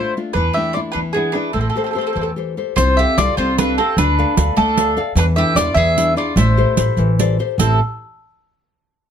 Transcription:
Already playing: A3 D4 E4 F4 C5
0.17 A3 D4 F4
0.33 E2 E3 D4 B4
0.54 A3 D4 G4 E5
0.58 E4
0.73 A3 D4 E4 F4 D5
0.92 E2 E3 D4 B4
1.13 B3 D4 E4 G#4
1.32 D4 E4 G#4 B4
1.53 A1 A3 C4 A4
1.61 C4 A4
1.70 C4 A4
1.75 C4 G4 A4 C5
1.84 C4 A4
1.91 C4 A4
1.95 G4 A4 C5
2.01 C4
2.06 C4 A4
2.13 E2 E3 C4 A4
2.21 C4 A4
2.36 G4 A4 C5
2.57 G4 A4 C5
2.76 C2 C4 F4 C5, riq
2.97 G4 A4 E5 F5
3.18 C2 F4 G4 A4 D5 F5, riq
3.37 C2 C4 F4 C5, riq
3.58 D4 G4 A4 B4 F5, riq
3.78 C4 G4 A4 F5
3.97 D2 D4 B4, riq
4.19 A4 D5 F5
4.37 D2 A4 D5 F5, riq
4.57 D2 A3 D4 A4, riq
4.77 A4 D5 F5, riq
4.97 A4 D5 F5
5.15 E2 E3 D4 B4, riq
5.36 D4 E4 G4 A4 E5
5.55 E2 D4 E4 F4 A4 D5, riq
5.74 E2 E3 G#4 E5, riq
5.97 D4 E4 G#4, riq
6.17 D4 E4 F4 G#4 D5
6.36 A1 A3 E4 C5, riq
6.57 G4 A4 C5
6.77 A1 G4 A4 C5, riq
6.97 A1 E3, riq
7.19 G4 A4 C5 D5, riq
7.39 G4 A4 C5
7.58 A1 A2 E3 A3 C4 E4 G4 A4, riq

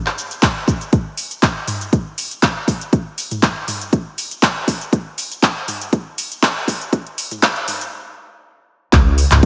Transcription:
0.06 clap
0.18 shaker
0.31 closed hi-hat, shaker
0.43 kick, clap, closed hi-hat
0.68 kick, shaker
0.81 closed hi-hat, shaker
0.93 kick, closed hi-hat, shaker
1.18 open hi-hat, shaker
1.31 closed hi-hat, shaker
1.43 kick, clap, closed hi-hat, shaker
1.68 mid tom, open hi-hat, shaker
1.81 closed hi-hat, shaker
1.93 kick, closed hi-hat, shaker
2.18 open hi-hat, shaker
2.31 closed hi-hat, shaker
2.43 kick, clap, closed hi-hat, shaker
2.68 kick, open hi-hat, shaker
2.81 closed hi-hat, shaker
2.93 kick, closed hi-hat, shaker
3.18 open hi-hat, shaker
3.31 closed hi-hat, mid tom, shaker
3.43 kick, clap, closed hi-hat, shaker
3.68 mid tom, open hi-hat, shaker
3.81 closed hi-hat, shaker
3.93 kick, closed hi-hat, shaker
4.18 open hi-hat, shaker
4.31 closed hi-hat, shaker
4.43 kick, clap, closed hi-hat, shaker
4.68 kick, open hi-hat, shaker
4.81 closed hi-hat, shaker
4.93 kick, closed hi-hat, shaker
5.18 open hi-hat, shaker
5.32 closed hi-hat, shaker
5.43 kick, clap, closed hi-hat, shaker
5.68 mid tom, open hi-hat, shaker
5.82 closed hi-hat, shaker
5.93 kick, closed hi-hat, shaker
6.18 open hi-hat, shaker
6.32 closed hi-hat, shaker
6.43 kick, clap, closed hi-hat, shaker
6.68 kick, open hi-hat, shaker
6.81 closed hi-hat, shaker
6.93 kick, closed hi-hat, shaker
7.07 closed hi-hat
7.18 open hi-hat, shaker
7.31 closed hi-hat, mid tom, shaker
7.43 kick, clap, closed hi-hat, shaker
7.56 closed hi-hat
7.68 mid tom, open hi-hat, shaker
7.81 closed hi-hat, shaker
8.93 C#2, kick, clap, closed hi-hat, shaker
9.18 open hi-hat, shaker
9.31 C#2, clap, closed hi-hat, mid tom, shaker

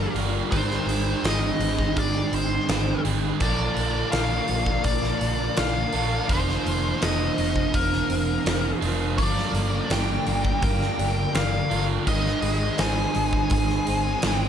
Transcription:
Already playing: G2 D3 G3 A#3 D4 G4 A#4 D5 F5 A#5
0.14 G1 G2 D3 G3 A#3 D4 F4 G4, open hi-hat
0.50 G#1 G#2 D#3 G#3 C4 D#4 G#4 C5 G5 C6, kick, open hi-hat
0.55 G#4
0.71 snare
0.86 G#1 G#3, open hi-hat
1.23 G#1 C4 D#5, snare, open hi-hat
1.59 G#1 D#3 G#3, open hi-hat
1.64 G#2
1.79 kick
1.96 G#1 G#3 D5, kick, open hi-hat
2.31 G#1 C4, open hi-hat
2.35 C5
2.68 G#1 G#3, snare, open hi-hat
3.05 G#1 G#3 C4 D#4 G#4, open hi-hat
3.40 A#1 A#2 D3 F3 A#3 D4 A#4 D5 F5 A5 D6, kick, open hi-hat
3.76 A#1, open hi-hat
4.12 A#1 D4 F5, snare, open hi-hat
4.48 A#1 F3 A#3, open hi-hat
4.52 A#2
4.66 kick
4.84 A#1 D5, kick, open hi-hat
5.04 snare
5.21 A#1 D4, open hi-hat
5.57 A#1 F5, snare, open hi-hat
5.93 A#1 A#2 D3 F3 A#3 D4 F4 A#4, open hi-hat
6.27 F1 F2 C3 D#3 F3 C4 D#4 A4 C5 D#6, kick, open hi-hat
6.49 snare
6.66 F1 A#3, open hi-hat
7.02 F1 C4 D#5, snare, open hi-hat
7.36 F1 F2 C3 D#3 F3, open hi-hat
7.56 kick
7.74 F1 A#3 A#4, kick, open hi-hat
7.93 snare
8.10 F1 C4, open hi-hat
8.45 F1 A#3, snare, open hi-hat
8.81 F1 F3 C4 D#4 F4 A4, open hi-hat
9.18 G1 G2 D3 F3 G3 A#3 D4 G4 A#4 D5 A#5 D6, kick, open hi-hat
9.38 snare
9.54 G1 A#3, open hi-hat
9.90 G1 D4 G5, snare, open hi-hat
10.26 G1 G2 D3 F3 G3, open hi-hat
10.45 kick
10.62 G1 A#3 G5, kick, open hi-hat
10.82 snare
10.99 G1 D4, open hi-hat
11.35 G1 A#3 F5, snare, open hi-hat
11.70 G1 G2 D3 G3 A#3 D4 F4 A#4, open hi-hat
12.05 G#1 G#2 D#3 G#3 C4 D#4 G#4 D#5 C6 D#6, kick, open hi-hat
12.09 G#3
12.26 snare
12.42 G#1 G#3, open hi-hat
12.78 G#1 C4 G#5, snare, open hi-hat
13.14 G#1 G#2 D#3 G#3, open hi-hat
13.33 kick
13.50 G#1 G#3 G#5, kick, open hi-hat
13.70 snare
13.87 G#1 C4, open hi-hat
14.22 G#1 G#3, snare, open hi-hat
14.27 G5

